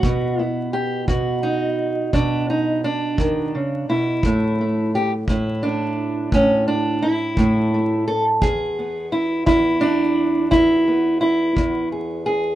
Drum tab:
BD |o--o--o--o--|o--o--o--o--|o--o--o--o--|